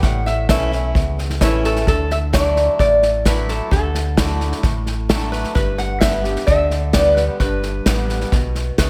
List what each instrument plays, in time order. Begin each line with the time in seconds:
0.03 sub bass A1, steel-string acoustic guitar A2, resonator guitar played with a steel bar F#5, kick, snare
0.26 resonator guitar played with a steel bar E5, snare
0.49 sub bass B1, steel-string acoustic guitar E3 A3 C#4 E4, upright piano E4 A4 C#5, resonator guitar played with a steel bar E5, kick, snare, hi-hat pedal
0.72 steel-string acoustic guitar C#4 E4, snare
0.95 sub bass C#2, steel-string acoustic guitar E2, kick, snare
1.18 snare
1.30 snare
1.41 sub bass A1, steel-string acoustic guitar E3 A3 C#4 E4, upright piano E4 A4 C#5, resonator guitar played with a steel bar E4, kick, snare, hi-hat pedal
1.64 resonator guitar played with a steel bar A4, snare
1.76 snare
1.87 sub bass D2, steel-string acoustic guitar D3, resonator guitar played with a steel bar A4, kick, snare
2.10 resonator guitar played with a steel bar E5, snare
2.33 steel-string acoustic guitar F#3 A3 D4 E4, resonator guitar played with a steel bar D5, kick, snare, hi-hat pedal
2.56 snare
2.79 sub bass A1, steel-string acoustic guitar A2, resonator guitar played with a steel bar D5, kick, snare
3.03 snare
3.25 steel-string acoustic guitar F#3 A3 D4 E4, resonator guitar played with a steel bar B4, kick, snare, hi-hat pedal
3.48 resonator guitar played with a steel bar A4, snare
3.71 sub bass D2, steel-string acoustic guitar D3, resonator guitar played with a steel bar A4, kick, snare
3.95 snare
4.17 steel-string acoustic guitar F#3 A3 D4 E4, kick, snare, hi-hat pedal
4.40 snare
4.52 snare
4.63 sub bass A1, steel-string acoustic guitar A2, kick, snare
4.86 snare
5.09 steel-string acoustic guitar F#3 A3 D4 E4, resonator guitar played with a steel bar A4, kick, snare, hi-hat pedal
5.32 resonator guitar played with a steel bar B4, snare
5.44 snare
5.55 sub bass G1, steel-string acoustic guitar G2, resonator guitar played with a steel bar B4, kick, snare
5.78 resonator guitar played with a steel bar F#5, snare
6.01 steel-string acoustic guitar D3 G3 B3 G4, resonator guitar played with a steel bar E5, kick, snare, hi-hat pedal
6.24 steel-string acoustic guitar B3 G4, snare
6.36 snare
6.47 sub bass D2, steel-string acoustic guitar D3, resonator guitar played with a steel bar E5, kick, snare
6.70 snare
6.93 steel-string acoustic guitar D3 G3 B3 G4, resonator guitar played with a steel bar D5, kick, snare, hi-hat pedal
7.17 resonator guitar played with a steel bar B4, snare
7.40 sub bass G1, steel-string acoustic guitar G2, resonator guitar played with a steel bar B4, kick, snare
7.63 snare
7.86 sub bass A1, steel-string acoustic guitar D3 G3 B3 G4, kick, snare, hi-hat pedal
8.09 snare
8.21 snare
8.32 sub bass B1, steel-string acoustic guitar B2, kick, snare
8.55 snare
8.78 sub bass C#2, steel-string acoustic guitar C#3, resonator guitar played with a steel bar B4, kick, snare, hi-hat pedal